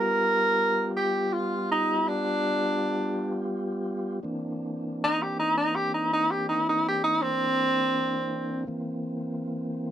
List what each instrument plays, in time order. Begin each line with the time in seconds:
Already playing: tonewheel organ G3 B3 F4 G4, tenor saxophone A#4
0.97 tenor saxophone G4
1.33 tenor saxophone F4
1.71 tenor saxophone D#4
2.07 tenor saxophone D4
4.23 tonewheel organ E3 A#3 C4 D4
5.04 tenor saxophone D#4
5.22 tenor saxophone G4
5.39 tenor saxophone D#4
5.57 tenor saxophone D#4
5.75 tenor saxophone G4
5.94 tenor saxophone D#4
6.13 tenor saxophone D#4
6.31 tenor saxophone G4
6.49 tenor saxophone D#4
6.69 tenor saxophone D#4
6.88 tenor saxophone G4
7.04 tenor saxophone D#4
7.22 tenor saxophone C4
8.67 tonewheel organ E3 A#3 C4